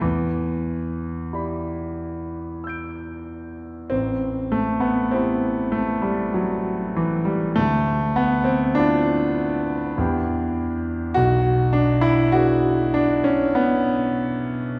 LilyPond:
\new Staff \with { instrumentName = "Grand piano" } { \time 3/4 \key e \phrygian \tempo 4 = 49 << { e2 <e''' g''' d''''>4 | c'8 a16 b16 c'8 a16 g16 fis8 e16 g16 | a8 b16 c'16 d'4. r8 | \key b \mixolydian fis'8 d'16 e'16 fis'8 d'16 cis'16 b4 | } \\ { e,4 <e' g' d'' b''>2 | a,,4 <e' g' c'' b''>2 | d,4 <e' f' c'' a''>4 <e, e' g' b' g''>4 | b,,4 <d' gis' b' fis''>2 | } >> }